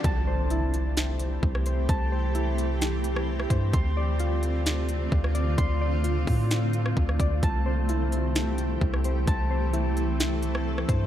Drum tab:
HH |x---x-x-x-x---x-|x---x-x-x-x---x-|x---x-x-x-x---x-|x---x-o-x-x---x-|
SD |--------o----r--|--------o--r-r--|--------o----r--|--------o--r-r--|
BD |o-----------o---|o-------------o-|o-----------o---|o-----o-----o-o-|

HH |x---x-x-x-x---x-|x---x-x-x-x---x-|
SD |--------o----r--|--------o--r-r--|
BD |o-----------o---|o-------------o-|